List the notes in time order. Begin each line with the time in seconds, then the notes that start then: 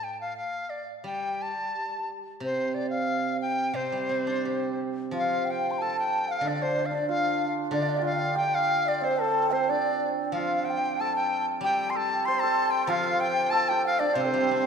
Already playing: A2
0.04 G5
0.21 F5
0.37 F5
0.70 D5
1.04 G3 G5
1.42 A5
2.40 C3 C5
2.74 D5
2.90 F5
3.41 G5
3.74 C3 C5
3.92 G3
4.09 C4
4.27 D4
4.45 G4
5.11 F3 F4 F5
5.18 F5
5.45 G5
5.51 G5
5.71 C6
5.78 A4 A5
5.99 G5
6.28 F5
6.41 D3 D4 D5
6.48 D5
6.62 C5
6.86 F5
6.91 D4 D5
7.08 F4 F5
7.71 D3 D4 D5
7.83 F5
7.89 D5
7.97 G4 F5
8.02 F4 D5
8.06 F5
8.13 F5
8.19 D5
8.35 G4 G5
8.55 F5
8.85 D5
9.01 C4 C5
9.17 A5
9.21 A4
9.51 C4 C5
9.68 D4 D5
10.25 G5
10.32 F3 F5
10.36 F4
10.65 G5
10.70 F5
10.78 G5
10.98 A4 A5
11.16 G5
11.61 G3 G4 G5
11.90 C6
11.95 A4 A5
12.25 C5 C6
12.40 A4 A5
12.71 G5
12.87 F3 F4 F5
13.20 G5
13.50 A4 A5
13.69 G4 G5
13.85 F5
13.99 D4 D5
14.14 C3 C4 C5
14.25 C4 A4
14.30 G3 C4 C5
14.41 C4
14.48 C4
14.54 C4
14.61 C4